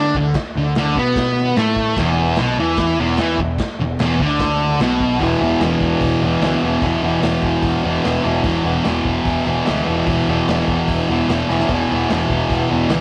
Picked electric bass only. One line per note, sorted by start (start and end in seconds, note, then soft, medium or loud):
0.00 0.13 D3 loud
0.15 0.34 D2 medium
0.56 0.74 D2 medium
0.76 0.95 D2 medium
0.96 1.52 B2 medium
1.57 1.94 A2 loud
1.97 2.35 E1 medium
2.38 2.57 B1 loud
2.59 2.96 E2 medium
2.99 3.17 E1 loud
3.19 3.37 E2 loud
3.38 3.57 E1 medium
3.79 3.98 E1 medium
4.00 4.18 E1 loud
4.19 4.76 D2 loud
4.80 5.18 B1 medium
5.21 5.34 E1 medium
5.41 5.54 E1 medium
5.61 5.74 E1 medium
5.81 5.94 E1 medium
6.01 6.15 E1 medium
6.22 6.35 E1 medium
6.42 6.55 D2 medium
6.63 6.76 E1 medium
6.82 6.95 E1 medium
7.03 7.16 E1 medium
7.23 7.36 E1 medium
7.43 7.56 E1 medium
7.63 7.76 E1 medium
7.84 7.97 E1 medium
8.05 8.18 E1 medium
8.25 8.38 E1 loud
8.44 8.57 E1 medium
8.65 8.78 E1 medium
8.87 9.00 E1 medium
9.05 9.18 E1 medium
9.26 9.39 E1 medium
9.47 9.60 E1 medium
9.69 9.81 D2 medium
9.88 10.01 E1 medium
10.07 10.20 E1 medium
10.28 10.41 E1 medium
10.48 10.61 E1 medium
10.68 10.81 E1 medium
10.88 11.01 E1 medium
11.09 11.22 E1 medium
11.29 11.42 E1 medium
11.50 11.63 E1 medium
11.69 11.82 E1 medium
11.92 12.04 E1 medium
12.11 12.24 E1 medium
12.29 12.43 E1 medium
12.50 12.63 E1 loud
12.71 12.84 E1 medium
12.89 13.01 D2 medium